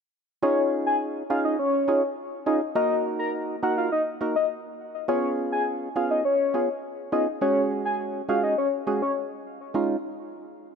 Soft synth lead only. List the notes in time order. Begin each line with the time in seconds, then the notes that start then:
0.43 C#5
0.86 G#5
1.30 F5
1.45 D#5
1.59 C#5
2.47 D#5
2.76 D#5
3.19 A#5
3.63 F#5
3.77 F5
3.92 D#5
4.36 D#5
5.09 C#5
5.52 G#5
5.96 F5
6.11 D#5
6.25 C#5
7.12 D#5
7.42 C#5
7.85 G#5
8.29 F5
8.43 D#5
8.58 C#5
9.02 C#5